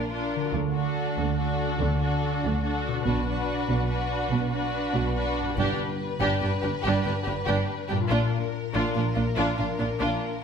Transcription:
0.00 0.44 A#1 soft
0.00 0.44 A#2 soft
0.00 0.47 A#2 soft
0.00 0.10 D4 soft
0.00 0.39 D4 soft
0.00 0.10 F4 soft
0.00 0.51 F4 soft
0.00 0.11 A#4 soft
0.00 0.54 A#4 soft
0.11 0.54 D4 soft
0.11 0.53 F4 soft
0.11 0.53 A#4 soft
0.36 2.99 D3 soft
0.41 2.91 D4 soft
0.45 2.95 F#4 soft
0.49 3.06 A4 soft
0.54 1.07 D2 soft
0.54 1.07 D3 soft
0.74 1.38 D4 soft
0.74 1.37 F#4 soft
0.74 1.37 A4 soft
1.17 1.71 D2 soft
1.17 1.70 D3 soft
1.39 2.01 D4 soft
1.39 2.00 F#4 soft
1.39 2.00 A4 soft
1.80 2.34 D2 soft
1.80 2.33 D3 soft
2.01 2.63 D4 soft
2.01 2.61 F#4 soft
2.01 2.61 A4 soft
2.44 2.97 D2 soft
2.44 2.96 D3 soft
2.62 3.06 D4 soft
2.62 3.03 F#4 soft
2.62 3.05 A4 soft
2.88 5.51 B2 soft
2.92 5.43 D4 soft
2.97 5.55 F#4 soft
3.01 3.25 F#4 soft
3.01 5.53 B4 soft
3.06 3.59 B1 soft
3.06 3.59 B2 soft
3.06 3.26 D4 soft
3.06 3.23 B4 soft
3.25 3.89 D4 soft
3.25 3.88 F#4 soft
3.25 3.88 B4 soft
3.69 4.22 B1 soft
3.69 4.22 B2 soft
3.89 4.51 D4 soft
3.89 4.51 F#4 soft
3.89 4.51 B4 soft
4.31 4.84 B1 medium
4.31 4.85 B2 soft
4.52 5.15 D4 soft
4.52 5.14 F#4 soft
4.52 5.14 B4 soft
4.95 5.48 B1 soft
4.95 5.48 B2 medium
5.15 5.57 D4 soft
5.15 5.57 F#4 soft
5.15 5.56 B4 soft
5.40 8.03 G2 soft
5.45 7.95 D4 soft
5.49 8.08 G4 soft
5.54 5.65 G1 soft
5.54 6.17 G2 soft
5.54 5.66 G2 medium
5.54 8.10 B4 soft
5.54 8.06 B4 soft
5.58 5.78 D4 medium
5.58 5.78 G4 soft
6.20 6.29 G1 medium
6.20 6.28 G2 medium
6.20 6.41 D4 soft
6.20 6.40 G4 medium
6.41 6.50 G1 soft
6.41 6.49 G2 soft
6.41 6.51 D4 soft
6.41 6.49 G4 soft
6.62 6.72 G1 soft
6.62 6.71 G2 soft
6.62 6.72 D4 soft
6.62 6.70 G4 soft
6.82 6.93 G1 medium
6.82 6.92 G2 medium
6.82 7.05 D4 soft
6.82 7.02 G4 soft
7.04 7.14 G1 soft
7.04 7.14 G2 soft
7.04 7.14 D4 soft
7.04 7.12 G4 soft
7.23 7.34 G1 soft
7.23 7.34 G2 soft
7.23 7.35 D4 soft
7.23 7.31 G4 soft
7.46 7.56 G1 medium
7.46 7.56 G2 medium
7.46 7.67 D4 soft
7.46 7.66 G4 soft
7.89 7.98 G1 soft
7.89 7.98 G2 soft
7.89 10.44 A#2 soft
7.89 7.98 D4 soft
7.89 7.97 G4 soft
7.96 10.44 D4 soft
8.01 10.44 F4 soft
8.06 8.29 F4 soft
8.06 10.44 A#4 soft
8.10 8.18 A#1 medium
8.10 8.19 A#2 medium
8.10 8.30 D4 medium
8.10 10.44 A#4 soft
8.73 8.82 A#1 medium
8.73 8.82 A#2 medium
8.73 8.93 D4 medium
8.73 8.94 F4 soft
8.95 9.05 A#1 soft
8.95 9.03 A#2 soft
8.95 9.04 D4 soft
8.95 9.03 F4 soft
9.16 9.25 A#1 soft
9.16 9.24 A#2 soft
9.16 9.24 D4 soft
9.16 9.24 F4 soft
9.37 9.46 A#1 soft
9.37 9.45 A#2 medium
9.37 9.57 D4 medium
9.37 9.57 F4 medium
9.58 9.68 A#1 soft
9.58 9.66 A#2 soft
9.58 9.66 D4 soft
9.58 9.66 F4 soft
9.79 9.89 A#1 soft
9.79 9.87 A#2 soft
9.79 9.88 D4 soft
9.79 9.88 F4 soft
10.00 10.10 A#1 soft
10.00 10.08 A#2 medium
10.00 10.20 D4 soft
10.00 10.21 F4 soft

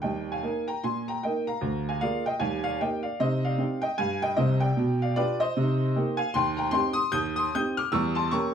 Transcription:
0.02 0.36 D#2 medium
0.02 0.26 G3 soft
0.02 0.28 D#5 medium
0.02 0.29 G5 medium
0.32 0.65 F5 medium
0.32 0.67 G#5 medium
0.43 0.65 A#3 soft
0.43 0.65 D#4 medium
0.43 0.65 A#4 medium
0.68 0.82 G5 medium
0.68 0.83 A#5 medium
0.84 1.17 A#2 medium
0.84 1.05 G#5 medium
0.84 1.06 C6 medium
1.08 1.22 G5 medium
1.08 1.23 A#5 medium
1.23 1.46 A#3 soft
1.23 1.46 D#4 soft
1.23 1.46 A#4 soft
1.23 1.45 D#5 medium
1.23 1.46 G5 medium
1.47 1.86 F5 medium
1.47 1.89 A#5 medium
1.61 1.95 D2 medium
1.89 2.00 F5 medium
1.89 2.01 G#5 medium
2.01 2.23 A#3 medium
2.01 2.23 F4 medium
2.01 2.24 G#4 medium
2.01 2.24 D5 medium
2.01 2.24 F5 loud
2.26 2.41 D#5 medium
2.26 2.41 G5 medium
2.40 2.73 D#2 medium
2.40 2.63 G3 soft
2.40 2.62 F5 medium
2.40 2.63 G#5 medium
2.64 2.79 D5 medium
2.64 2.80 F5 loud
2.81 3.02 A#3 soft
2.81 3.02 D#4 soft
2.81 3.03 G4 soft
2.81 3.03 D#5 medium
2.81 3.04 G5 medium
3.03 3.18 D5 medium
3.03 3.19 F5 medium
3.20 3.53 C3 medium
3.20 3.43 D#4 soft
3.20 3.44 C5 medium
3.20 3.46 D#5 loud
3.45 3.79 D5 medium
3.45 3.82 F5 medium
3.58 3.80 C4 medium
3.58 3.80 D#4 medium
3.58 3.81 G4 medium
3.82 3.98 D#5 medium
3.82 3.98 G5 loud
3.98 4.32 G2 medium
3.98 4.21 F5 medium
3.98 4.21 G#5 loud
4.22 4.35 D#5 medium
4.22 4.38 G5 loud
4.37 4.69 C2 medium
4.37 4.69 C3 medium
4.37 4.60 C5 medium
4.37 4.60 D#5 loud
4.60 5.01 D5 medium
4.60 5.03 G5 medium
4.77 5.11 B2 medium
5.02 5.15 D5 medium
5.02 5.16 F5 medium
5.16 5.38 D4 medium
5.16 5.38 F4 medium
5.16 5.39 G4 medium
5.16 5.39 B4 medium
5.16 5.40 D5 loud
5.40 6.15 C5 medium
5.40 6.19 D#5 loud
5.57 5.90 C3 medium
5.57 5.80 D#4 medium
5.96 6.18 A#3 medium
5.96 6.18 D#4 medium
5.96 6.18 G4 medium
6.17 6.34 F5 medium
6.17 6.34 G#5 loud
6.34 6.69 D#2 medium
6.34 6.57 G5 medium
6.34 6.58 C6 loud
6.57 6.72 G5 medium
6.57 6.74 A#5 medium
6.71 6.95 C4 medium
6.71 6.95 D#4 medium
6.71 6.95 G4 medium
6.71 6.96 G5 medium
6.71 6.94 C6 loud
6.93 7.11 C6 loud
6.93 7.11 D#6 loud
7.12 7.46 D#2 medium
7.12 7.35 D#6 loud
7.12 7.36 G6 loud
7.36 7.53 C6 medium
7.36 7.53 D#6 loud
7.55 7.77 C4 medium
7.55 7.76 D#4 medium
7.55 7.77 G4 medium
7.55 7.77 D#6 medium
7.55 7.78 G6 loud
7.77 7.93 D6 medium
7.77 7.93 F6 loud
7.92 8.26 E2 loud
7.92 8.16 G3 medium
7.92 8.15 C#6 medium
7.92 8.16 E6 loud
8.15 8.31 A5 medium
8.15 8.32 C6 loud
8.31 8.54 A#3 medium
8.31 8.54 C#4 medium
8.31 8.54 G4 medium
8.31 8.54 A#5 medium
8.31 8.54 C#6 loud

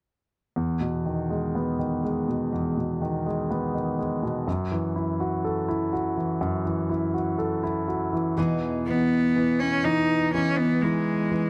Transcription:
0.56 2.51 E2 soft
0.81 2.27 B2 soft
1.06 1.78 D#3 soft
1.30 2.02 G#3 soft
1.55 3.46 B3 soft
1.79 3.00 D#3 soft
2.04 3.25 G#3 soft
2.28 2.76 B2 soft
2.53 4.43 E2 soft
2.77 4.22 B2 soft
3.02 3.73 D#3 soft
3.26 3.97 G#3 soft
3.51 4.44 B3 soft
3.75 4.45 D#3 soft
3.98 4.46 G#3 soft
4.23 4.46 B2 soft
4.47 6.40 F#2 soft
4.72 6.16 E3 soft
4.96 5.67 E4 soft
5.20 5.91 F#4 soft
5.44 7.35 A4 soft
5.68 6.88 E4 soft
5.93 7.13 F#4 soft
6.17 6.64 E3 soft
6.41 8.34 F#2 soft
6.65 8.11 E3 soft
6.89 7.62 E4 soft
7.14 7.86 F#4 soft
7.39 8.35 A4 soft
7.63 8.35 E4 soft
7.88 8.36 F#4 soft
8.13 8.36 E3 soft
8.37 10.34 E2 medium
8.37 10.34 B2 medium
8.37 8.86 E3 medium
8.37 10.33 E3 medium
8.37 10.34 B3 medium
8.37 10.34 D#4 medium
8.37 10.34 G#4 medium
8.87 9.35 E3 soft
8.87 9.61 B3 medium
9.36 9.84 E3 soft
9.59 9.86 C#4 medium
9.84 10.33 E3 soft
9.84 10.33 D#4 medium
10.33 10.83 E3 soft
10.33 10.81 E3 soft
10.33 10.83 B3 soft
10.33 10.58 C#4 medium
10.33 10.82 D#4 soft
10.33 10.82 G#4 soft
10.56 10.83 B3 medium
10.81 11.30 E3 soft
10.81 11.50 E3 soft
10.81 11.50 G#3 medium
10.81 11.50 B3 soft
10.81 11.50 D#4 soft
10.81 11.50 G#4 soft
11.31 11.50 E3 soft

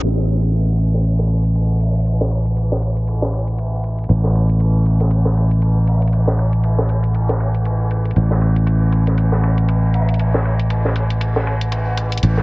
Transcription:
0.03 4.07 A1 medium
0.03 ride medium
0.03 crash medium
0.17 snare soft
0.28 ride medium
0.43 closed hi-hat medium
0.54 closed hi-hat medium
0.54 ride medium
0.78 closed hi-hat soft
0.78 ride medium
0.94 snare soft
0.94 closed hi-hat soft
1.04 closed hi-hat medium
1.04 ride medium
1.19 snare soft
1.29 ride medium
1.44 closed hi-hat soft
1.55 closed hi-hat medium
1.55 ride medium
1.81 closed hi-hat soft
1.81 open hi-hat medium
1.95 closed hi-hat soft
2.01 closed hi-hat medium
2.06 closed hi-hat medium
2.06 ride medium
2.21 snare medium
2.31 ride medium
2.46 closed hi-hat soft
2.57 closed hi-hat medium
2.57 ride medium
2.72 snare soft
2.82 closed hi-hat soft
2.82 ride medium
2.97 closed hi-hat soft
2.97 ride soft
3.08 closed hi-hat medium
3.08 ride medium
3.22 snare soft
3.33 ride medium
3.48 closed hi-hat soft
3.58 closed hi-hat medium
3.58 ride medium
3.84 closed hi-hat soft
3.84 ride medium
3.99 closed hi-hat soft
4.04 closed hi-hat medium
4.09 8.14 A1 medium
4.09 closed hi-hat medium
4.09 ride medium
4.24 snare soft
4.35 ride medium
4.49 closed hi-hat soft
4.60 closed hi-hat medium
4.60 ride medium
4.86 closed hi-hat soft
4.86 ride medium
5.00 snare soft
5.00 closed hi-hat soft
5.10 closed hi-hat medium
5.10 ride medium
5.25 snare soft
5.37 ride medium
5.51 closed hi-hat soft
5.62 closed hi-hat medium
5.62 ride medium
5.87 closed hi-hat soft
5.87 open hi-hat medium
6.02 closed hi-hat soft
6.07 closed hi-hat medium
6.13 closed hi-hat medium
6.13 ride medium
6.27 snare medium
6.39 ride medium
6.53 closed hi-hat soft
6.64 closed hi-hat medium
6.64 ride medium
6.78 snare soft
6.89 closed hi-hat soft
6.89 ride medium
7.03 closed hi-hat soft
7.03 ride soft
7.15 closed hi-hat medium
7.15 ride medium
7.29 snare soft
7.29 closed hi-hat soft
7.40 ride medium
7.55 closed hi-hat soft
7.65 closed hi-hat medium
7.65 ride medium
7.91 closed hi-hat soft
7.91 ride medium
8.05 closed hi-hat soft
8.11 closed hi-hat medium
8.16 12.21 A1 medium
8.16 closed hi-hat medium
8.16 ride medium
8.31 snare soft
8.41 ride medium
8.56 closed hi-hat soft
8.66 closed hi-hat medium
8.66 ride medium
8.92 closed hi-hat soft
8.92 ride medium
9.07 snare soft
9.07 closed hi-hat soft
9.18 closed hi-hat medium
9.18 ride medium
9.32 snare soft
9.43 ride medium
9.58 closed hi-hat soft
9.68 closed hi-hat medium
9.68 ride medium
9.94 closed hi-hat soft
9.94 open hi-hat medium
10.09 closed hi-hat soft
10.14 closed hi-hat medium
10.19 closed hi-hat medium
10.19 ride medium
10.34 snare medium
10.45 ride medium
10.60 closed hi-hat soft
10.70 closed hi-hat medium
10.70 ride medium
10.85 snare soft
10.96 closed hi-hat soft
10.96 ride medium
11.10 closed hi-hat soft
11.10 ride soft
11.21 closed hi-hat medium
11.21 ride medium
11.36 snare soft
11.47 ride medium
11.61 closed hi-hat soft
11.72 closed hi-hat medium
11.72 ride medium
11.97 closed hi-hat soft
11.97 ride medium
12.12 closed hi-hat soft
12.18 closed hi-hat medium
12.23 12.43 A1 medium
12.23 closed hi-hat medium
12.23 ride medium
12.37 snare soft

